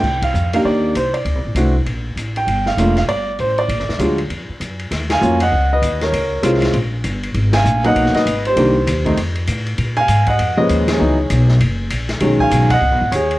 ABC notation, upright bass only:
X:1
M:4/4
L:1/8
Q:"Swing" 1/4=197
K:Bb
V:1 name="Upright bass" clef=bass
C,,2 F,,2 E,,2 C,,2 | (3D,, C,, A,,, C,,2 B,,,2 A,,,2 | G,,,2 F,,,2 G,,,2 A,,,2 | (3B,,, _A,,, F,,, D,,2 F,, z _G,,2 |
[K:Ebm] E,,2 F,,2 D,,2 E,,2 | D,,2 =C,,2 B,,,2 =G,,,2 | A,,,2 B,,,2 C,, z A,,,2 | =C,,2 E,,2 F,,2 =A,,2 |
B,,2 A,,2 F,,2 E,,2 | D,,2 C,,2 G,,,2 B,,,2 | =B,,,2 B,,,2 (3^C,, B,,, ^G,,, ^D,,2 |]